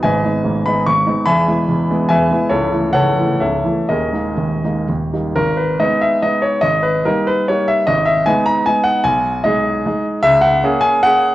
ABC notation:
X:1
M:3/4
L:1/8
Q:1/4=146
K:G#m
V:1 name="Grand piano"
[Bdg]3 b c'2 | [egb]4 [Beg]2 | [E=Ac]2 [Acf]2 [Ace]2 | [GAd]4 z2 |
A B d e d c | d B A B c e | d e g a g f | g2 d3 z |
e f2 g f2 |]
V:2 name="Grand piano" clef=bass
[G,,,G,,] [G,B,D] [G,,,G,,] [G,B,D] [G,,,G,,] [G,B,D] | [E,,,E,,] [G,B,E] [E,,,E,,] [G,B,E] [E,,,E,,] [G,B,E] | [C,,,C,,] [E,=A,E] [C,,,C,,] [E,A,E] [C,,,C,,] [E,A,E] | [D,,,D,,] [G,A,D] [D,,,D,,] [G,A,D] [D,,,D,,] [=G,A,D] |
G,,,2 [G,B,D]2 [G,B,D]2 | G,,,2 [=G,A,D]2 [G,A,D]2 | G,,,2 [G,B,D]2 [G,B,D]2 | B,,,2 [G,DG]2 [G,DG]2 |
C,,2 [A,CG]2 [A,CG]2 |]